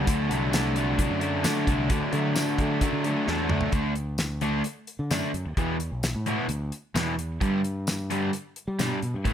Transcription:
0.07 0.28 D2 medium
0.07 0.52 D3 loud
0.07 0.32 F#3 medium
0.07 0.31 A3 loud
0.07 0.29 D4 loud
0.07 kick loud
0.07 closed hi-hat loud
0.30 1.06 C2 medium
0.30 0.53 F#3 medium
0.30 0.53 A3 medium
0.30 0.55 D4 medium
0.30 closed hi-hat medium
0.52 0.97 D3 medium
0.52 0.78 F#3 medium
0.52 0.77 A3 loud
0.52 0.75 D4 loud
0.52 snare loud
0.52 closed hi-hat loud
0.52 tambourine loud
0.76 0.99 F#3 medium
0.76 1.00 A3 medium
0.76 1.01 D4 medium
0.76 closed hi-hat medium
0.98 1.42 D3 medium
0.98 1.23 F#3 loud
0.98 1.21 A3 medium
0.98 1.20 D4 loud
0.98 kick medium
0.98 closed hi-hat loud
1.10 1.42 F#2 medium
1.21 1.44 F#3 medium
1.21 1.45 A3 medium
1.21 1.45 D4 medium
1.21 closed hi-hat medium
1.43 1.89 D3 medium
1.43 1.66 D3 loud
1.43 1.69 F#3 medium
1.43 1.68 A3 medium
1.43 1.66 D4 medium
1.43 snare loud
1.43 closed hi-hat loud
1.43 tambourine loud
1.66 1.89 C2 medium
1.66 1.89 F#3 medium
1.66 1.90 A3 medium
1.66 1.91 D4 medium
1.66 kick medium
1.66 closed hi-hat medium
1.89 2.01 D2 medium
1.89 2.34 D3 loud
1.89 2.14 F#3 loud
1.89 2.13 A3 loud
1.89 2.11 D4 loud
1.89 kick loud
1.89 closed hi-hat loud
2.12 2.89 D3 medium
2.12 2.35 F#3 medium
2.12 2.36 A3 medium
2.12 2.37 D4 medium
2.12 closed hi-hat medium
2.35 2.81 D3 medium
2.35 2.60 F#3 medium
2.35 2.60 A3 medium
2.35 2.57 D4 medium
2.35 snare loud
2.35 closed hi-hat loud
2.35 tambourine loud
2.58 2.81 F#3 medium
2.58 2.82 A3 medium
2.58 2.83 D4 medium
2.58 kick medium
2.58 closed hi-hat medium
2.81 3.26 D3 medium
2.81 3.07 F#3 loud
2.81 3.05 A3 loud
2.81 3.04 D4 loud
2.81 kick medium
2.81 closed hi-hat loud
2.93 3.14 D3 medium
3.04 3.27 F#3 medium
3.04 3.28 A3 medium
3.04 3.30 D4 medium
3.04 closed hi-hat medium
3.28 3.49 E2 medium
3.28 3.72 D3 medium
3.28 3.52 F#3 medium
3.28 3.50 A3 medium
3.28 3.49 D4 medium
3.28 snare medium
3.49 3.71 D2 medium
3.49 3.73 F#3 medium
3.49 3.73 A3 medium
3.49 3.72 D4 medium
3.49 mid tom medium
3.61 floor tom medium
3.72 4.61 D2 medium
3.72 3.92 D3 medium
3.72 3.92 A3 medium
3.72 3.93 D4 medium
3.72 kick loud
3.72 closed hi-hat medium
3.95 closed hi-hat medium
4.18 snare loud
4.18 closed hi-hat medium
4.18 tambourine loud
4.41 4.60 D3 medium
4.41 4.61 A3 medium
4.41 4.61 D4 medium
4.41 closed hi-hat medium
4.64 closed hi-hat medium
4.87 closed hi-hat medium
4.99 5.10 D3 medium
5.11 5.22 F#2 medium
5.11 5.30 D3 medium
5.11 5.30 A3 medium
5.11 5.30 D4 medium
5.11 snare medium
5.11 closed hi-hat medium
5.11 tambourine loud
5.34 5.45 F#2 medium
5.34 closed hi-hat medium
5.46 5.56 D#2 medium
5.57 5.89 E2 medium
5.57 5.76 E2 medium
5.57 5.76 B2 medium
5.57 5.76 E3 medium
5.57 kick medium
5.57 closed hi-hat medium
5.80 closed hi-hat medium
5.92 6.13 B1 medium
6.03 snare loud
6.03 closed hi-hat medium
6.03 tambourine loud
6.15 6.36 A2 medium
6.26 6.45 E2 medium
6.26 6.45 B2 medium
6.26 6.46 E3 medium
6.26 closed hi-hat medium
6.48 6.70 D2 medium
6.48 closed hi-hat medium
6.72 closed hi-hat medium
6.95 7.14 E2 medium
6.95 7.38 E2 medium
6.95 7.14 B2 medium
6.95 7.14 E3 medium
6.95 snare loud
6.95 closed hi-hat medium
6.95 tambourine medium
7.19 closed hi-hat medium
7.41 7.60 G2 medium
7.41 8.30 G2 medium
7.41 7.60 D3 medium
7.41 7.60 G3 loud
7.41 kick loud
7.41 closed hi-hat medium
7.64 closed hi-hat medium
7.87 snare medium
7.87 closed hi-hat medium
7.87 tambourine medium
8.10 8.29 G2 medium
8.10 8.29 D3 medium
8.10 8.30 G3 medium
8.10 closed hi-hat medium
8.33 closed hi-hat medium
8.56 closed hi-hat medium
8.68 8.78 G3 medium
8.79 8.98 G2 medium
8.79 8.90 B2 medium
8.79 8.98 D3 medium
8.79 8.99 G3 medium
8.79 snare loud
8.79 closed hi-hat medium
8.79 tambourine loud
9.02 9.13 B2 medium
9.02 closed hi-hat medium
9.14 9.25 G2 medium
9.25 9.33 A2 medium
9.25 9.33 E3 medium
9.25 9.33 A3 medium
9.25 kick loud
9.25 closed hi-hat medium

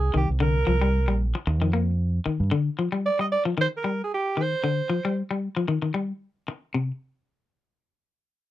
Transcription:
0.00 0.16 G#4 medium
0.14 0.27 C2 medium
0.14 0.31 D#3 medium
0.14 0.28 G4 medium
0.29 0.64 C2 medium
0.40 0.57 D3 medium
0.40 1.17 A#4 medium
0.67 1.09 C2 medium
0.67 0.76 F3 medium
0.81 0.98 G3 medium
1.08 1.32 A#1 medium
1.08 1.25 G3 medium
1.35 muted clean electric guitar stroke medium
1.47 1.60 D#2 medium
1.47 muted clean electric guitar stroke medium
1.60 2.19 F2 medium
1.60 1.69 D#3 medium
1.73 1.90 A#3 medium
2.26 2.42 D#3 medium
2.26 muted fingered electric bass stroke soft
2.40 2.51 G2 medium
2.51 2.68 D3 medium
2.79 2.88 F3 medium
2.92 3.09 G3 medium
3.06 3.19 D5 loud
3.19 3.36 G3 medium
3.19 3.26 D#5 medium
3.32 3.44 D5 medium
3.45 3.53 F3 medium
3.58 3.67 D#3 medium
3.58 3.67 C5 loud
3.77 3.99 A#4 medium
3.84 4.01 G3 medium
4.04 4.13 G#4 medium
4.14 4.43 G4 medium
4.37 4.54 D#3 medium
4.42 5.19 C5 medium
4.64 4.80 D3 medium
4.90 4.99 F3 medium
5.05 5.21 G3 medium
5.31 5.47 G3 medium
5.57 5.65 F3 medium
5.68 5.78 D#3 medium
5.82 5.91 D#3 medium
5.94 6.12 G3 medium
6.48 muted clean electric guitar stroke medium
6.74 6.91 C3 medium

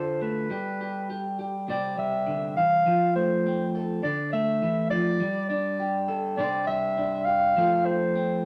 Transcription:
0.00 0.50 D3 medium
0.00 0.48 F4 medium
0.00 2.86 A4 medium
0.00 0.23 C5 medium
0.22 0.47 A3 medium
0.22 1.39 B4 medium
0.50 1.68 G3 medium
0.50 0.80 G4 medium
0.81 1.09 G4 soft
1.10 1.38 G4 medium
1.39 1.65 G4 medium
1.68 2.82 C3 medium
1.68 1.96 G3 medium
1.68 3.45 C4 medium
1.68 2.83 G4 medium
1.68 1.96 D5 medium
1.97 2.86 G3 medium
1.97 2.53 E5 medium
2.27 2.56 D3 medium
2.57 2.86 E3 medium
2.57 3.11 F5 loud
2.86 4.00 F3 medium
3.16 4.00 A3 medium
3.16 3.70 C5 medium
3.46 4.04 C4 medium
3.75 4.01 A4 medium
4.03 4.62 D3 medium
4.03 4.31 D5 loud
4.33 5.18 A3 medium
4.33 4.88 E5 medium
4.62 4.91 E3 medium
4.90 5.21 F3 medium
4.90 5.46 D5 medium
5.20 6.37 G3 medium
5.49 6.35 D4 medium
5.49 6.04 D5 medium
5.80 6.35 G4 medium
6.08 6.38 A4 medium
6.37 7.52 C3 medium
6.37 6.66 G3 medium
6.37 6.96 D4 medium
6.37 7.25 G4 medium
6.37 7.53 C5 medium
6.37 6.65 D5 medium
6.67 7.56 G3 medium
6.67 7.27 E5 loud
6.97 7.53 D4 medium
7.25 7.52 G4 medium
7.25 7.87 F5 loud
7.56 8.45 F3 medium
7.56 7.84 A3 medium
7.56 8.14 C4 medium
7.56 8.43 F4 medium
7.56 8.45 A4 medium
7.85 8.45 A3 medium
7.85 8.44 C5 medium
8.16 8.45 C4 medium

